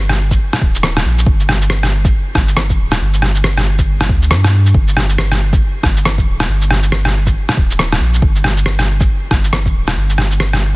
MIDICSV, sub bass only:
0, 0, Header, 1, 2, 480
1, 0, Start_track
1, 0, Key_signature, -2, "minor"
1, 0, Tempo, 434783
1, 1400, Time_signature, 4, 2, 24, 8
1, 11878, End_track
2, 0, Start_track
2, 0, Title_t, "Sub bass"
2, 0, Program_c, 0, 38
2, 0, Note_on_c, 0, 31, 94
2, 424, Note_off_c, 0, 31, 0
2, 676, Note_on_c, 0, 26, 92
2, 1146, Note_off_c, 0, 26, 0
2, 1156, Note_on_c, 0, 34, 77
2, 1383, Note_off_c, 0, 34, 0
2, 1395, Note_on_c, 0, 31, 96
2, 2345, Note_off_c, 0, 31, 0
2, 2595, Note_on_c, 0, 31, 86
2, 3065, Note_off_c, 0, 31, 0
2, 3080, Note_on_c, 0, 26, 78
2, 3305, Note_off_c, 0, 26, 0
2, 3321, Note_on_c, 0, 31, 97
2, 4516, Note_on_c, 0, 38, 93
2, 4533, Note_off_c, 0, 31, 0
2, 4758, Note_on_c, 0, 43, 84
2, 4774, Note_off_c, 0, 38, 0
2, 5227, Note_off_c, 0, 43, 0
2, 5238, Note_on_c, 0, 31, 89
2, 6187, Note_off_c, 0, 31, 0
2, 6439, Note_on_c, 0, 31, 89
2, 6907, Note_off_c, 0, 31, 0
2, 6921, Note_on_c, 0, 26, 82
2, 7145, Note_off_c, 0, 26, 0
2, 7158, Note_on_c, 0, 31, 96
2, 8107, Note_off_c, 0, 31, 0
2, 8359, Note_on_c, 0, 26, 96
2, 8827, Note_off_c, 0, 26, 0
2, 8835, Note_on_c, 0, 34, 78
2, 9062, Note_off_c, 0, 34, 0
2, 9078, Note_on_c, 0, 31, 97
2, 10027, Note_off_c, 0, 31, 0
2, 10276, Note_on_c, 0, 31, 85
2, 10746, Note_off_c, 0, 31, 0
2, 10760, Note_on_c, 0, 26, 87
2, 10984, Note_off_c, 0, 26, 0
2, 10998, Note_on_c, 0, 31, 95
2, 11878, Note_off_c, 0, 31, 0
2, 11878, End_track
0, 0, End_of_file